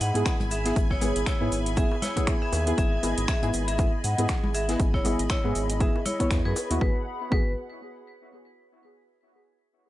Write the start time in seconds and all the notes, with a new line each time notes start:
Already playing: G#4 E5 G#5 B5 G#6
0.00 G#2 D#5 F#5, open hi-hat, shaker
0.14 G#2 B3 E4 G#4, closed hi-hat, high bongo, high conga, shaker
0.25 finger snap, kick, snare, closed hi-hat, shaker
0.40 G#1, closed hi-hat, low conga
0.51 G#4 E5, open hi-hat, shaker
0.65 B3 E4 G#4, snare, closed hi-hat, shaker
0.76 G#1, kick, closed hi-hat, shaker
0.91 E4 C#5, kick, snare
1.01 G#1 B3 E4 G#4, open hi-hat, high bongo, low conga, shaker
1.16 G#1, closed hi-hat, shaker
1.26 E4 C#5, finger snap, kick, snare, closed hi-hat, shaker
1.40 G#2 B3 E4 G#4, high conga
1.52 G#1, open hi-hat, shaker
1.66 closed hi-hat, shaker
1.76 B3 E4 G#4 E5, kick, closed hi-hat, shaker
1.91 high bongo
2.02 E4 C#5, snare, open hi-hat, low conga, shaker
2.16 B3 E4 G#4, kick, closed hi-hat, high conga, shaker
2.27 finger snap, kick, closed hi-hat, shaker
2.42 G#4 E5
2.52 D#2, open hi-hat, high bongo, shaker
2.66 B3 E4 G#4, closed hi-hat, shaker
2.78 G#1 G#4 D#5 E5, kick, closed hi-hat, shaker
3.02 G#1 B3 E4 G#4, open hi-hat, high bongo, shaker
3.18 G#1, closed hi-hat, shaker
3.28 G#4 E5, finger snap, kick, snare, closed hi-hat, shaker
3.42 G#2 B3 E4 G#4, closed hi-hat, high conga
3.53 G#1, open hi-hat, shaker
3.68 G#4 E5, closed hi-hat, shaker
3.78 B3 E4 G#4, kick, closed hi-hat, shaker
4.04 G#2 D#5 F#5, open hi-hat, shaker
4.18 G#2 B3 E4 G#4, closed hi-hat, high bongo, high conga, shaker
4.29 finger snap, kick, snare, closed hi-hat, shaker
4.44 G#1, low conga
4.54 G#4 E5, open hi-hat, shaker
4.68 B3 E4 G#4, snare, closed hi-hat, shaker
4.80 G#1, kick, closed hi-hat, shaker
4.94 E4 C#5, kick, snare
5.04 G#1 B3 E4 G#4, open hi-hat, high bongo, low conga, shaker
5.19 G#1, closed hi-hat, shaker
5.30 E4 C#5, finger snap, kick, snare, closed hi-hat, shaker
5.44 G#2 B3 E4 G#4, high conga
5.55 G#1, open hi-hat, shaker
5.70 closed hi-hat, shaker
5.80 B3 E4 G#4 E5, kick, closed hi-hat, shaker
5.96 high bongo
6.06 E4 C#5, open hi-hat, low conga, shaker
6.19 B3 E4 C#5, kick, closed hi-hat, high conga, shaker
6.31 E2, finger snap, kick, snare, closed hi-hat, shaker
6.45 F#2 G#4 B4
6.56 open hi-hat, high bongo, shaker
6.70 D#2 B3 E4 F#4, closed hi-hat, shaker
6.80 G#1 B3 G#4 B4 F#5 B5, kick
7.30 G#1 B3 F#4 G#4 B4, kick